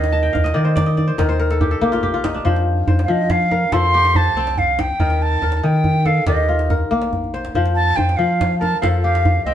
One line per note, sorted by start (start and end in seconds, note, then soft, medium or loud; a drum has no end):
0.00 0.30 D#2 medium
0.00 0.53 D#3 medium
0.00 1.08 C4 medium
0.00 0.27 G4 medium
0.00 0.26 C5 medium
0.00 0.50 D5 medium
0.00 0.77 D#5 medium
0.00 djembe slap medium
0.12 0.99 A5 medium
0.12 djembe slap soft
0.23 1.16 G5 medium
0.23 djembe slap soft
0.33 0.53 D#2 medium
0.33 1.33 F5 medium
0.33 djembe tone medium
0.33 djembe bass medium
0.44 0.82 D#5 medium
0.44 djembe slap medium
0.54 1.17 D#3 medium
0.54 1.12 D#3 medium
0.54 0.75 D5 medium
0.65 1.07 C5 medium
0.76 0.97 D5 medium
0.76 djembe slap medium
0.76 djembe bass medium
0.86 1.93 D#5 medium
0.86 djembe slap soft
0.97 1.24 D5 medium
0.97 djembe tone medium
1.08 1.28 C5 medium
1.18 1.75 D#2 medium
1.18 2.51 D#3 medium
1.18 1.39 A#4 medium
1.18 djembe slap medium
1.18 djembe bass medium
1.29 2.44 C5 medium
1.29 djembe slap soft
1.39 1.77 A#4 medium
1.50 1.71 A4 medium
1.50 djembe slap medium
1.61 1.81 G4 medium
1.61 djembe slap soft
1.61 djembe tone medium
1.61 djembe bass medium
1.71 3.03 A4 medium
1.81 2.38 A#1 loud
1.81 3.78 A#3 medium
1.81 2.02 G4 medium
1.92 2.13 F4 medium
1.92 djembe slap medium
2.03 3.44 G4 medium
2.03 djembe slap soft
2.03 djembe bass medium
2.14 3.65 F4 medium
2.14 djembe slap soft
2.24 3.86 D#4 medium
2.24 djembe slap medium
2.24 djembe tone medium
2.34 4.02 D4 medium
2.45 2.83 F2 loud
2.45 3.07 F3 medium
2.45 2.87 C5 medium
2.45 djembe bass medium
2.56 djembe slap soft
2.78 djembe slap soft
2.87 3.06 F2 medium
2.87 4.06 C5 medium
2.87 djembe tone medium
2.87 djembe bass medium
2.99 djembe slap medium
3.04 3.12 F5 medium
3.08 3.72 F3 medium
3.08 3.66 F3 loud
3.08 3.33 D#5 medium
3.30 3.74 F5 loud
3.30 djembe slap medium
3.30 djembe bass medium
3.41 djembe slap soft
3.51 4.79 A#4 medium
3.51 djembe tone medium
3.72 4.29 F2 medium
3.72 5.05 F3 medium
3.72 5.06 A4 medium
3.72 4.18 C6 loud
3.72 djembe slap medium
3.72 djembe bass medium
3.84 djembe slap soft
3.94 5.35 G4 medium
4.05 djembe slap medium
4.15 5.35 C5 medium
4.15 4.60 A5 loud
4.15 djembe slap soft
4.15 djembe tone medium
4.15 djembe bass medium
4.35 4.92 C2 loud
4.35 6.17 C4 medium
4.47 djembe slap medium
4.58 4.82 F5 medium
4.58 djembe slap soft
4.58 djembe bass medium
4.68 djembe slap soft
4.79 5.24 G5 loud
4.79 djembe slap medium
4.79 djembe tone medium
4.99 5.37 D#2 loud
4.99 5.62 D#3 medium
4.99 5.42 A#4 medium
4.99 djembe slap soft
4.99 djembe bass medium
5.10 djembe slap medium
5.20 5.57 A5 loud
5.20 djembe slap soft
5.32 djembe slap soft
5.42 5.61 D#2 medium
5.42 6.12 A#4 medium
5.42 djembe tone medium
5.52 djembe slap medium
5.57 5.66 A5 medium
5.63 6.25 D#3 medium
5.63 6.20 D#3 loud
5.63 6.08 G5 medium
5.84 djembe bass medium
6.05 6.76 A4 medium
6.05 6.27 F5 medium
6.05 djembe tone medium
6.27 6.84 D#2 medium
6.27 7.60 D#3 medium
6.27 7.68 G4 medium
6.27 6.72 D#5 medium
6.27 djembe slap medium
6.27 djembe bass medium
6.49 8.00 F4 medium
6.59 djembe slap medium
6.70 7.97 A#4 medium
6.70 djembe tone medium
6.70 djembe bass medium
6.80 djembe slap soft
6.91 7.48 A#1 loud
6.91 8.89 A#3 medium
7.02 djembe slap medium
7.13 djembe slap soft
7.13 djembe bass medium
7.24 djembe bass soft
7.34 7.55 C5 medium
7.34 djembe slap soft
7.45 djembe slap medium
7.55 7.93 F2 loud
7.55 8.17 F3 medium
7.55 7.97 C5 medium
7.55 djembe bass medium
7.66 djembe slap soft
7.75 7.98 A5 medium
7.75 djembe slap soft
7.87 djembe slap soft
7.96 8.16 F2 medium
7.96 9.16 C5 medium
7.96 8.18 G5 loud
7.96 djembe tone medium
7.96 djembe bass medium
8.09 djembe slap medium
8.17 8.81 F3 medium
8.17 8.75 F3 loud
8.17 8.58 F5 medium
8.41 djembe slap medium
8.41 djembe bass medium
8.51 djembe slap soft
8.59 9.54 A#4 medium
8.59 8.80 A5 loud
8.59 djembe tone medium
8.81 9.39 F2 medium
8.81 9.54 F3 medium
8.81 9.54 A4 medium
8.81 8.87 F5 medium
8.81 djembe slap medium
8.81 djembe bass medium
8.94 djembe slap soft
9.02 9.54 G4 medium
9.02 9.42 F5 loud
9.15 djembe slap medium
9.25 djembe slap soft
9.25 djembe tone medium
9.25 djembe bass medium
9.45 9.54 C2 loud
9.45 9.54 C4 medium
9.45 9.54 D#5 medium